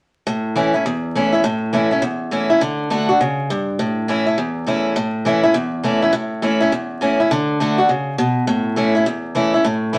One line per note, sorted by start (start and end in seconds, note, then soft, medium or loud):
0.27 0.83 A2 medium
0.56 0.73 E3 medium
0.56 0.74 A3 medium
0.56 0.74 C#4 medium
0.56 0.73 E4 medium
0.74 0.85 C#4 soft
0.74 0.85 E4 medium
0.86 1.42 E2 medium
1.15 1.33 E3 medium
1.15 1.33 A3 medium
1.15 1.33 C#4 medium
1.15 1.31 E4 medium
1.32 1.44 C#4 soft
1.32 1.43 E4 medium
1.44 2.00 A2 medium
1.73 1.91 E3 medium
1.73 1.91 A3 medium
1.73 1.91 C#4 medium
1.73 1.90 E4 medium
1.91 2.03 C#4 soft
1.91 2.02 E4 medium
2.02 2.59 E2 medium
2.31 2.49 E3 medium
2.31 2.50 A3 medium
2.31 2.50 C#4 medium
2.31 2.49 E4 medium
2.50 2.61 C#4 soft
2.50 2.61 E4 medium
2.61 2.89 D3 medium
2.90 3.08 D3 medium
2.90 3.09 A3 medium
2.90 3.09 D4 medium
2.90 3.07 F#4 medium
3.09 3.20 D4 soft
3.09 3.19 F#4 medium
3.21 3.49 C#3 medium
3.50 3.78 G2 medium
3.79 4.36 A2 medium
4.08 4.26 E3 medium
4.08 4.26 A3 medium
4.08 4.27 C#4 medium
4.08 4.25 E4 medium
4.26 4.38 C#4 soft
4.26 4.37 E4 medium
4.38 4.94 E2 medium
4.66 4.95 E3 medium
4.66 4.95 A3 medium
4.66 4.96 C#4 medium
4.66 4.96 E4 medium
4.96 5.53 A2 medium
5.25 5.43 E3 medium
5.25 5.44 A3 medium
5.25 5.44 C#4 medium
5.25 5.42 E4 medium
5.43 5.55 C#4 soft
5.43 5.54 E4 medium
5.54 6.11 E2 medium
5.83 6.02 E3 medium
5.83 6.02 A3 medium
5.83 6.02 C#4 medium
5.83 6.01 E4 medium
6.02 6.14 C#4 medium
6.02 6.13 E4 medium
6.13 6.70 A2 medium
6.42 6.60 E3 medium
6.42 6.60 A3 medium
6.42 6.61 C#4 medium
6.42 6.59 E4 medium
6.60 6.72 C#4 medium
6.60 6.71 E4 medium
6.72 7.29 E2 medium
7.01 7.19 E3 medium
7.01 7.19 A3 medium
7.01 7.19 C#4 medium
7.01 7.19 E4 medium
7.20 7.31 C#4 soft
7.20 7.30 E4 medium
7.31 7.59 D3 loud
7.60 7.78 D3 medium
7.60 7.78 A3 medium
7.60 7.78 D4 medium
7.60 7.77 F#4 medium
7.78 7.89 D4 soft
7.78 7.89 F#4 medium
7.89 8.17 C#3 medium
8.18 8.47 B2 medium
8.47 9.04 A2 medium
8.76 8.94 E3 medium
8.76 8.95 A3 medium
8.76 8.95 C#4 medium
8.76 8.94 E4 medium
8.95 9.06 C#4 soft
8.95 9.06 E4 medium
9.06 9.63 E2 medium
9.35 9.53 E3 medium
9.35 9.53 A3 medium
9.35 9.53 C#4 medium
9.35 9.53 E4 medium
9.54 9.65 C#4 soft
9.54 9.64 E4 medium
9.64 9.98 A2 medium
9.93 9.98 E3 medium
9.93 9.98 A3 medium
9.93 9.98 C#4 medium
9.93 9.98 E4 medium